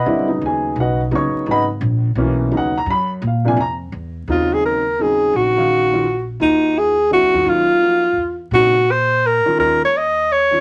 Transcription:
X:1
M:3/4
L:1/8
Q:"Swing" 1/4=170
K:B
V:1 name="Alto saxophone"
z6 | z6 | z6 | z6 |
[K:Ebdor] F A B2 A2 | G4- G z | E2 A2 G2 | F4- F z |
G2 c2 B2 | B d e2 d2 |]
V:2 name="Upright piano"
[Bdfb] z [Gg]2 [FBdf] z | [cc']2 [Bdfb] z3 | z2 f a b z | ^e g a z3 |
[K:Ebdor] z6 | z6 | z6 | z6 |
z6 | z6 |]
V:3 name="Upright piano"
[=D,=G,^B,E] [C,F,=B,^D]4 z | [C,F,B,D]2 [C,F,B,D] z3 | [B,,E,A,C]2 [C,F,B,D] z3 | z [^B,,^E,A,=D] z4 |
[K:Ebdor] [D,G,CE]3 z [D,G,CE]2- | [D,G,CE] [E,A,Df]2 [E,A,DF] z2 | [B,EFG]3 z [=D,=G,C_F] [E,A,_D=F] | [G,B,EF]2 [F,B,EG] z3 |
[D,G,CE] z4 [E,A,DF] | [E,A,DF] z4 [E,A,DF] |]
V:4 name="Upright bass" clef=bass
F,,2 D,,2 B,,,2 | F,,, z G,,,2 A,,,2 | B,,,2 D,,2 F,,2 | A,,2 ^E,,2 =E,,2 |
[K:Ebdor] E,,6 | B,,,6 | E,,4- (3E,, F,, _F,, | G,,4 _F,,2 |
B,,4- B,, z | E,,6 |]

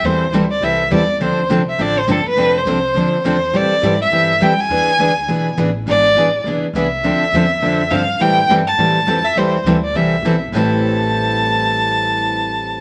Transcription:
X:1
M:4/4
L:1/8
Q:"Swing" 1/4=206
K:Am
V:1 name="Violin"
c2 z d e2 d2 | c2 z e d c A B- | B c4- c c2 | d3 e3 g ^g- |
^g6 z2 | d4 z2 e2- | e6 f2 | g2 z a4 e |
c2 z d e3 z | a8- | a8 |]
V:2 name="Steel-string acoustic guitar"
[E,G,CEA] z [E,G,CEA] z [E,G,CEA] z [E,G,CEA] z | [D,F,CDA] z [D,F,CDA] z [D,F,CDA] z [D,F,CDA] z | [D,F,CDA] z [D,F,CDA] z [D,F,CDA] z [D,F,CDA] z | [E,G,CEA] z [E,G,CEA] z [E,G,CEA] z [E,G,CEA] z |
[E,B,D^G] z [E,B,DG] z [E,B,DG] z [E,B,DG] z | [E,B,D^G] z [E,B,DG] z [E,B,DG] z [E,B,DG] z | [D,F,CDA] z [D,F,CDA] z [D,F,CDA] z [D,F,CDA] z | [E,G,CEA] z [E,G,CEA] z [E,G,CEA] z [E,G,CEA] z |
[E,G,CEA] z [E,G,CEA] z [E,G,CEA] z [E,G,CEA] z | [A,,E,G,CEA]8- | [A,,E,G,CEA]8 |]
V:3 name="Steel-string acoustic guitar"
[E,G,CEA] z [E,G,CEA] z [E,G,CEA] z [E,G,CEA] z | [D,F,CDA] z [D,F,CDA] z [D,F,CDA] z [D,F,CDA] z | [D,F,CDA] z [D,F,CDA] z [D,F,CDA] z [D,F,CDA] z | [E,G,CEA] z [E,G,CEA] z [E,G,CEA] z [E,G,CEA] z |
[E,B,D^GB] z [E,B,DGB] z [E,B,DGB] z [E,B,DGB] z | [E,B,D^GB] z [E,B,DGB] z [E,B,DGB] z [E,B,DGB] z | [D,F,CDA] z [D,F,CDA] z [D,F,CDA] z [D,F,CDA] z | [E,G,CEA] z [E,G,CEA] z [E,G,CEA] z [E,G,CEA] z |
[E,G,CEA] z [E,G,CEA] z [E,G,CEA] z [E,G,CEA] z | [A,,E,G,CEA]8- | [A,,E,G,CEA]8 |]
V:4 name="Upright bass" clef=bass
E,,2 D,,2 C,,2 E,,2 | D,,2 C,,2 A,,,2 G,,, z | F,,,2 C,,2 D,, z E,,2 | A,, z ^G,,2 =G,,2 F,,2 |
E,, z D,,2 B,,,2 A,,,2 | ^G,,,2 A,,,2 B,,, z C,,2 | D,,2 E,,2 F,,2 G,,2 | A,,2 G,,2 A,,2 F,,2 |
E,,2 D,,2 C,,2 B,,,2 | A,,,8- | A,,,8 |]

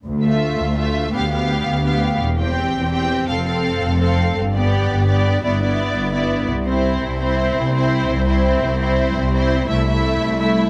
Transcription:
X:1
M:12/8
L:1/8
Q:3/8=112
K:C
V:1 name="Violin section"
z e3 e2 f f3 f2 | z g3 g2 f f3 f2 | z d3 d2 d d3 d2 | z c3 c3 c3 c2- |
c c3 c2 e e3 e2 |]
V:2 name="Violin section"
z F3 F2 G G3 G2 | z G3 G2 A A3 A2 | z G3 G2 E E3 E2 | z E3 E3 E3 E2- |
E E3 E2 E E3 E2 |]
V:3 name="Viola section"
z A,3 A,2 B, B,3 B,2 | z C3 C2 C C3 C2 | z B,3 B,2 B, B,3 B,2 | z C3 C3 C3 C2- |
C C3 C2 A, A,3 A,2 |]
V:4 name="Cello section" clef=bass
D,,3 D,,3 D,,3 D,,3 | E,,3 E,,3 F,,3 F,,3 | G,,3 G,,3 G,,3 G,,3 | C,,3 C,,3 C,,3 C,,3 |
C,,3 C,,3 C,,3 C,,3 |]
V:5 name="Double bass section" clef=bass
D,,3 D,,3 D,,3 D,,3 | E,,,3 E,,,3 F,,,3 F,,,3 | G,,,3 G,,,3 G,,,3 G,,,3 | C,,3 C,,3 C,,3 C,,3 |
C,,3 C,,3 C,,3 C,,3 |]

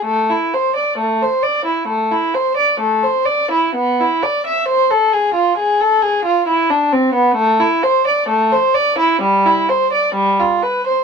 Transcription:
X:1
M:4/4
L:1/16
Q:1/4=66
K:Ephr
V:1 name="Violin"
A, E c d A, c d E A, E c d A, c d E | B, E d e c A ^G F G A G F E D C B, | [K:Am] A, E c d A, c d E G, E c d G, F B c |]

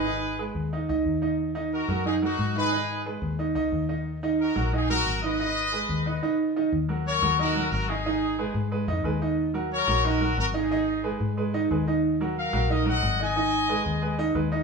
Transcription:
X:1
M:4/4
L:1/8
Q:1/4=181
K:Ebm
V:1 name="Trumpet section"
[Ac]2 z6 | z2 [GB]2 [EA] [EG]2 [Ac]- | [Ac]2 z6 | z2 [GB]2 [EA] [GB]2 [ce]- |
[ce]6 z2 | z2 [Bd]2 [GB]2 [GB] [EA]- | [EA]3 z4 z | z2 [Bd]2 [GB]2 [GB] [EA]- |
[EA]3 z4 z | z2 [Bf]2 [Be] [eg]2 [ea]- | [ea]4- [ea] z3 |]
V:2 name="Upright piano"
[E,Ee]2 [A,Ac]2 [E,Ee] [E,Ee]2 [E,Ee]- | [E,Ee] [E,Ee]2 [G,GB] [E,Ee] [G,GB]2 [E,Ee] | [E,Ee]2 [A,Ac]2 [E,Ee] [E,Ee]2 [E,Ee]- | [E,Ee] [E,Ee]2 [G,GB] [E,Ee] [G,GB]2 [E,Ee] |
[E,Ee]2 [A,Ac]2 [E,Ee] [E,Ee]2 [E,Ee] | z [G,GB]2 [G,GB] [E,Ee] [G,GB]2 [E,Ee] | [E,Ee]2 [A,Ac]2 [A,Ac] [E,Ee] [A,Ac] [E,Ee]- | [E,Ee] [G,GB]2 [G,GB] [E,Ee] [G,GB]2 [E,Ee] |
[E,Ee]2 [A,Ac]2 [A,Ac] [E,Ee] [A,Ac] [E,Ee]- | [E,Ee] [G,GB]2 [G,GB] [E,Ee] [G,GB]2 [E,Ee] | [E,Ee]2 [A,Ac]2 [A,Ac] [E,Ee] [A,Ac] [E,Ee] |]
V:3 name="Fingered electric bass" clef=bass
A,,,3 E,,2 D,, E,,2- | E,,3 G,,3 A,,2- | A,,3 E,,2 D,, E,,2- | E,,3 B,,,3 A,,,2- |
A,,,3 E,,2 z3 | E,,3 E,,3 A,,,2- | A,,,3 A,,2 F,, E,,2- | E,,3 B,,,3 A,,,2- |
A,,,3 A,,3 E,,2- | E,,3 B,,,3 A,,,2- | A,,,3 E,,3 E,,2 |]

